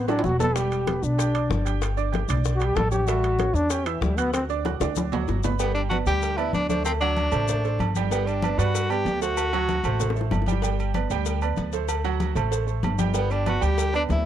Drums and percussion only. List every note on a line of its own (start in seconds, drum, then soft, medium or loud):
0.08 high bongo loud
0.08 high conga soft
0.08 high timbale medium
0.08 maracas soft
0.19 high timbale loud
0.24 low bongo medium
0.24 high conga medium
0.24 maracas soft
0.29 low timbale medium
0.39 low bongo medium
0.39 high conga medium
0.39 low timbale loud
0.39 maracas medium
0.56 high bongo medium
0.56 high conga soft
0.56 high timbale medium
0.56 maracas medium
0.72 high conga soft
0.72 high timbale medium
0.72 maracas soft
0.87 high bongo medium
0.87 high conga loud
0.87 high timbale loud
0.87 maracas soft
1.03 maracas medium
1.19 high bongo medium
1.19 high timbale medium
1.19 maracas loud
1.35 high conga soft
1.35 high timbale loud
1.35 maracas soft
1.51 high bongo medium
1.51 low bongo loud
1.51 high conga medium
1.51 maracas soft
1.66 high timbale medium
1.66 maracas medium
1.82 high bongo medium
1.82 high conga soft
1.82 high timbale medium
1.82 maracas medium
1.97 high bongo soft
1.97 high conga soft
1.97 maracas soft
2.13 high bongo medium
2.13 high conga loud
2.13 high timbale medium
2.13 maracas soft
2.29 high conga soft
2.29 low conga medium
2.29 high timbale loud
2.29 maracas medium
2.45 high bongo medium
2.45 high conga soft
2.45 maracas medium
2.60 high bongo soft
2.60 high conga soft
2.60 high timbale medium
2.60 maracas soft
2.76 high bongo medium
2.76 low bongo medium
2.76 high conga medium
2.76 high timbale medium
2.76 low timbale medium
2.76 maracas soft
2.92 high bongo soft
2.92 high conga medium
2.92 maracas medium
3.07 high bongo medium
3.07 high conga soft
3.07 high timbale medium
3.07 maracas medium
3.23 high conga soft
3.23 high timbale medium
3.23 maracas soft
3.39 high bongo medium
3.39 high conga loud
3.39 high timbale medium
3.39 maracas soft
3.55 maracas medium
3.70 high bongo medium
3.70 high conga soft
3.70 high timbale medium
3.70 maracas loud
3.85 high conga soft
3.85 high timbale loud
3.85 maracas soft
4.01 high bongo medium
4.01 low bongo medium
4.01 high conga medium
4.01 maracas soft
4.18 high conga medium
4.18 high timbale medium
4.18 maracas medium
4.34 high bongo medium
4.34 high conga soft
4.34 high timbale loud
4.34 maracas medium
4.49 high bongo soft
4.49 high conga soft
4.49 maracas soft
4.65 high bongo medium
4.65 high conga loud
4.65 high timbale medium
4.65 maracas soft
4.81 high bongo loud
4.81 high conga soft
4.81 low conga medium
4.81 high timbale medium
4.81 maracas medium
4.96 high bongo medium
4.96 high conga loud
4.96 high timbale loud
4.96 maracas loud
5.12 low conga medium
5.12 low timbale loud
5.12 maracas soft
5.28 low bongo medium
5.28 low timbale medium
5.28 maracas soft
5.43 low bongo medium
5.43 low conga medium
5.43 low timbale loud
5.43 maracas medium
5.59 cowbell loud
5.59 high conga soft
5.59 maracas medium
5.75 high conga soft
5.75 low agogo medium
5.75 maracas soft
5.90 cowbell medium
5.90 high conga loud
5.90 low agogo medium
5.90 maracas soft
6.06 cowbell medium
6.06 maracas medium
6.22 cowbell medium
6.22 high conga soft
6.22 low agogo medium
6.22 maracas medium
6.38 high conga soft
6.38 low agogo loud
6.38 maracas soft
6.53 cowbell medium
6.53 high conga medium
6.53 maracas soft
6.69 cowbell medium
6.69 high conga medium
6.69 maracas medium
6.85 cowbell loud
6.85 low agogo loud
6.85 maracas medium
7.01 cowbell medium
7.01 high conga soft
7.01 low agogo medium
7.01 maracas soft
7.17 cowbell medium
7.17 high conga loud
7.17 low agogo medium
7.17 maracas soft
7.32 cowbell medium
7.32 high conga soft
7.32 low conga medium
7.32 low agogo loud
7.32 maracas medium
7.48 cowbell loud
7.48 high conga soft
7.48 low conga medium
7.48 maracas loud
7.64 high conga soft
7.64 maracas soft
7.79 cowbell medium
7.79 high conga medium
7.79 low agogo loud
7.79 maracas soft
7.95 cowbell medium
7.95 high conga medium
7.95 maracas medium
8.11 cowbell loud
8.11 high conga soft
8.11 maracas medium
8.27 high conga soft
8.27 low agogo medium
8.27 maracas soft
8.42 cowbell medium
8.42 high conga loud
8.42 low agogo loud
8.42 maracas soft
8.59 cowbell medium
8.59 maracas medium
8.75 cowbell loud
8.75 high conga soft
8.75 low agogo medium
8.75 maracas loud
8.90 high conga soft
8.90 low agogo loud
8.90 maracas soft
9.06 cowbell medium
9.06 high conga medium
9.06 low timbale medium
9.06 maracas soft
9.22 cowbell medium
9.22 maracas medium
9.37 cowbell loud
9.37 high conga soft
9.37 low agogo loud
9.37 maracas medium
9.53 cowbell medium
9.53 high conga soft
9.53 low agogo loud
9.53 maracas soft
9.69 cowbell medium
9.69 high conga loud
9.69 low agogo medium
9.69 maracas soft
9.84 cowbell medium
9.84 high conga soft
9.84 low conga medium
9.84 low agogo loud
9.84 maracas medium
10.00 cowbell loud
10.00 high bongo medium
10.00 high conga soft
10.00 low conga medium
10.00 maracas medium
10.10 high bongo loud
10.16 high conga soft
10.16 maracas soft
10.21 low bongo medium
10.31 cowbell medium
10.31 low bongo medium
10.31 high conga medium
10.31 low timbale medium
10.31 low agogo medium
10.31 maracas soft
10.42 low bongo medium
10.46 cowbell medium
10.46 high conga medium
10.46 maracas medium
10.52 low bongo medium
10.62 cowbell loud
10.62 high conga soft
10.62 maracas medium
10.79 high conga soft
10.79 low agogo medium
10.79 maracas soft
10.94 cowbell medium
10.94 high conga loud
10.94 low agogo loud
10.94 maracas soft
11.10 cowbell medium
11.10 maracas medium
11.25 cowbell loud
11.25 high conga soft
11.25 low agogo medium
11.25 maracas loud
11.41 high conga soft
11.41 low agogo loud
11.41 maracas soft
11.56 cowbell medium
11.56 high conga medium
11.56 maracas soft
11.73 cowbell medium
11.73 maracas medium
11.88 cowbell loud
11.88 high conga soft
11.88 low agogo loud
11.88 maracas medium
12.04 cowbell medium
12.04 high conga soft
12.04 low agogo loud
12.04 maracas soft
12.20 cowbell medium
12.20 high conga loud
12.20 low agogo medium
12.20 maracas soft
12.36 cowbell medium
12.36 high conga soft
12.36 low conga medium
12.36 low agogo loud
12.36 maracas medium
12.52 cowbell medium
12.52 high conga soft
12.52 maracas loud
12.68 high conga soft
12.68 maracas soft
12.83 cowbell medium
12.83 high conga medium
12.83 low timbale medium
12.83 low agogo medium
12.83 maracas soft
12.98 cowbell medium
12.98 high conga loud
12.98 maracas medium
13.14 cowbell loud
13.14 maracas medium
13.30 high conga soft
13.30 low agogo medium
13.30 maracas soft
13.46 cowbell medium
13.46 high conga loud
13.46 low agogo loud
13.46 maracas soft
13.62 cowbell medium
13.62 maracas medium
13.78 cowbell loud
13.78 high conga soft
13.78 low agogo medium
13.78 maracas medium
13.93 high conga soft
13.93 low agogo loud
13.93 maracas soft
14.09 cowbell medium
14.09 high conga medium
14.09 low timbale medium
14.09 maracas soft